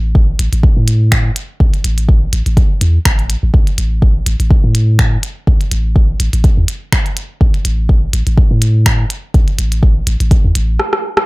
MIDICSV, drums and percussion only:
0, 0, Header, 1, 2, 480
1, 0, Start_track
1, 0, Tempo, 483871
1, 1589, Time_signature, 4, 2, 24, 8
1, 11168, End_track
2, 0, Start_track
2, 0, Title_t, "Drums"
2, 149, Note_on_c, 9, 36, 107
2, 248, Note_off_c, 9, 36, 0
2, 389, Note_on_c, 9, 42, 95
2, 489, Note_off_c, 9, 42, 0
2, 522, Note_on_c, 9, 42, 42
2, 621, Note_off_c, 9, 42, 0
2, 629, Note_on_c, 9, 36, 125
2, 728, Note_off_c, 9, 36, 0
2, 869, Note_on_c, 9, 42, 90
2, 968, Note_off_c, 9, 42, 0
2, 1109, Note_on_c, 9, 26, 105
2, 1109, Note_on_c, 9, 36, 106
2, 1208, Note_off_c, 9, 26, 0
2, 1209, Note_off_c, 9, 36, 0
2, 1349, Note_on_c, 9, 42, 97
2, 1449, Note_off_c, 9, 42, 0
2, 1589, Note_on_c, 9, 36, 113
2, 1688, Note_off_c, 9, 36, 0
2, 1722, Note_on_c, 9, 42, 36
2, 1821, Note_off_c, 9, 42, 0
2, 1829, Note_on_c, 9, 42, 92
2, 1928, Note_off_c, 9, 42, 0
2, 1962, Note_on_c, 9, 42, 46
2, 2061, Note_off_c, 9, 42, 0
2, 2069, Note_on_c, 9, 36, 106
2, 2169, Note_off_c, 9, 36, 0
2, 2310, Note_on_c, 9, 42, 94
2, 2409, Note_off_c, 9, 42, 0
2, 2442, Note_on_c, 9, 42, 41
2, 2541, Note_off_c, 9, 42, 0
2, 2549, Note_on_c, 9, 36, 123
2, 2550, Note_on_c, 9, 42, 40
2, 2649, Note_off_c, 9, 36, 0
2, 2649, Note_off_c, 9, 42, 0
2, 2790, Note_on_c, 9, 42, 91
2, 2889, Note_off_c, 9, 42, 0
2, 3029, Note_on_c, 9, 36, 105
2, 3030, Note_on_c, 9, 26, 98
2, 3129, Note_off_c, 9, 26, 0
2, 3129, Note_off_c, 9, 36, 0
2, 3163, Note_on_c, 9, 42, 28
2, 3262, Note_off_c, 9, 42, 0
2, 3270, Note_on_c, 9, 42, 91
2, 3369, Note_off_c, 9, 42, 0
2, 3509, Note_on_c, 9, 36, 110
2, 3609, Note_off_c, 9, 36, 0
2, 3642, Note_on_c, 9, 42, 34
2, 3742, Note_off_c, 9, 42, 0
2, 3750, Note_on_c, 9, 42, 91
2, 3849, Note_off_c, 9, 42, 0
2, 3990, Note_on_c, 9, 36, 100
2, 4089, Note_off_c, 9, 36, 0
2, 4230, Note_on_c, 9, 42, 91
2, 4329, Note_off_c, 9, 42, 0
2, 4363, Note_on_c, 9, 42, 39
2, 4462, Note_off_c, 9, 42, 0
2, 4470, Note_on_c, 9, 36, 120
2, 4569, Note_off_c, 9, 36, 0
2, 4710, Note_on_c, 9, 42, 89
2, 4809, Note_off_c, 9, 42, 0
2, 4950, Note_on_c, 9, 26, 100
2, 4950, Note_on_c, 9, 36, 105
2, 5049, Note_off_c, 9, 26, 0
2, 5049, Note_off_c, 9, 36, 0
2, 5189, Note_on_c, 9, 42, 91
2, 5289, Note_off_c, 9, 42, 0
2, 5429, Note_on_c, 9, 36, 105
2, 5529, Note_off_c, 9, 36, 0
2, 5562, Note_on_c, 9, 42, 33
2, 5662, Note_off_c, 9, 42, 0
2, 5669, Note_on_c, 9, 42, 89
2, 5768, Note_off_c, 9, 42, 0
2, 5909, Note_on_c, 9, 36, 96
2, 6008, Note_off_c, 9, 36, 0
2, 6149, Note_on_c, 9, 42, 88
2, 6248, Note_off_c, 9, 42, 0
2, 6281, Note_on_c, 9, 42, 42
2, 6381, Note_off_c, 9, 42, 0
2, 6389, Note_on_c, 9, 36, 113
2, 6389, Note_on_c, 9, 42, 41
2, 6488, Note_off_c, 9, 36, 0
2, 6488, Note_off_c, 9, 42, 0
2, 6629, Note_on_c, 9, 42, 87
2, 6728, Note_off_c, 9, 42, 0
2, 6869, Note_on_c, 9, 26, 97
2, 6869, Note_on_c, 9, 36, 98
2, 6968, Note_off_c, 9, 26, 0
2, 6968, Note_off_c, 9, 36, 0
2, 7002, Note_on_c, 9, 42, 31
2, 7101, Note_off_c, 9, 42, 0
2, 7109, Note_on_c, 9, 42, 88
2, 7208, Note_off_c, 9, 42, 0
2, 7349, Note_on_c, 9, 36, 102
2, 7448, Note_off_c, 9, 36, 0
2, 7482, Note_on_c, 9, 42, 34
2, 7581, Note_off_c, 9, 42, 0
2, 7588, Note_on_c, 9, 42, 86
2, 7687, Note_off_c, 9, 42, 0
2, 7829, Note_on_c, 9, 36, 94
2, 7928, Note_off_c, 9, 36, 0
2, 8068, Note_on_c, 9, 42, 85
2, 8168, Note_off_c, 9, 42, 0
2, 8200, Note_on_c, 9, 42, 42
2, 8300, Note_off_c, 9, 42, 0
2, 8308, Note_on_c, 9, 36, 116
2, 8408, Note_off_c, 9, 36, 0
2, 8549, Note_on_c, 9, 42, 83
2, 8648, Note_off_c, 9, 42, 0
2, 8789, Note_on_c, 9, 26, 104
2, 8789, Note_on_c, 9, 36, 98
2, 8888, Note_off_c, 9, 26, 0
2, 8888, Note_off_c, 9, 36, 0
2, 9029, Note_on_c, 9, 42, 88
2, 9128, Note_off_c, 9, 42, 0
2, 9269, Note_on_c, 9, 36, 109
2, 9269, Note_on_c, 9, 42, 30
2, 9368, Note_off_c, 9, 36, 0
2, 9368, Note_off_c, 9, 42, 0
2, 9401, Note_on_c, 9, 42, 34
2, 9500, Note_off_c, 9, 42, 0
2, 9509, Note_on_c, 9, 42, 89
2, 9608, Note_off_c, 9, 42, 0
2, 9641, Note_on_c, 9, 42, 52
2, 9741, Note_off_c, 9, 42, 0
2, 9749, Note_on_c, 9, 36, 95
2, 9848, Note_off_c, 9, 36, 0
2, 9989, Note_on_c, 9, 42, 88
2, 10088, Note_off_c, 9, 42, 0
2, 10121, Note_on_c, 9, 42, 44
2, 10221, Note_off_c, 9, 42, 0
2, 10229, Note_on_c, 9, 36, 113
2, 10229, Note_on_c, 9, 42, 43
2, 10328, Note_off_c, 9, 36, 0
2, 10328, Note_off_c, 9, 42, 0
2, 10468, Note_on_c, 9, 42, 88
2, 10568, Note_off_c, 9, 42, 0
2, 10709, Note_on_c, 9, 37, 57
2, 10808, Note_off_c, 9, 37, 0
2, 10841, Note_on_c, 9, 37, 58
2, 10940, Note_off_c, 9, 37, 0
2, 11081, Note_on_c, 9, 37, 82
2, 11168, Note_off_c, 9, 37, 0
2, 11168, End_track
0, 0, End_of_file